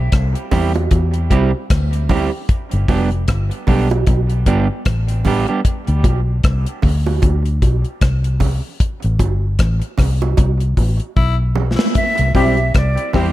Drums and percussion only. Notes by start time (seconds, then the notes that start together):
0.12 kick, cross-stick, closed hi-hat
0.35 closed hi-hat
0.51 kick, cross-stick, open hi-hat, low bongo
0.74 closed hi-hat, high bongo
0.91 kick, closed hi-hat, high bongo
1.14 closed hi-hat
1.31 kick, closed hi-hat, high bongo
1.70 kick, cross-stick, closed hi-hat
1.93 closed hi-hat
2.09 kick, open hi-hat, low bongo
2.49 kick, closed hi-hat
2.71 closed hi-hat
2.88 kick, open hi-hat, high bongo
3.11 closed hi-hat
3.28 kick, cross-stick, closed hi-hat
3.51 closed hi-hat
3.67 kick, open hi-hat, low bongo
3.90 closed hi-hat, high bongo
4.07 kick, closed hi-hat, high bongo
4.30 closed hi-hat
4.46 kick, closed hi-hat, high bongo
4.85 kick, cross-stick, closed hi-hat
5.08 closed hi-hat
5.25 kick, open hi-hat, low bongo
5.48 closed hi-hat
5.65 kick, closed hi-hat
5.87 closed hi-hat
6.04 kick, closed hi-hat, high bongo
6.44 kick, cross-stick, closed hi-hat
6.67 closed hi-hat
6.82 kick, open hi-hat, low bongo
7.06 high bongo
7.22 kick, closed hi-hat, high bongo
7.46 closed hi-hat
7.62 kick, closed hi-hat, high bongo
7.84 closed hi-hat
8.01 kick, cross-stick, closed hi-hat
8.24 closed hi-hat
8.40 kick, open hi-hat, low bongo
8.80 kick, closed hi-hat
9.02 closed hi-hat
9.19 kick, closed hi-hat, high bongo
9.59 kick, cross-stick, closed hi-hat
9.82 closed hi-hat
9.98 kick, cross-stick, open hi-hat, low bongo
10.21 closed hi-hat, high bongo
10.37 kick, closed hi-hat, high bongo
10.60 closed hi-hat
10.77 kick, open hi-hat, high bongo
11.00 closed hi-hat
11.17 kick
11.55 low bongo
11.79 snare
11.95 kick, closed hi-hat
12.18 closed hi-hat
12.35 kick, open hi-hat, high bongo
12.57 closed hi-hat
12.74 kick, cross-stick, closed hi-hat
12.97 closed hi-hat
13.13 kick, cross-stick, open hi-hat, low bongo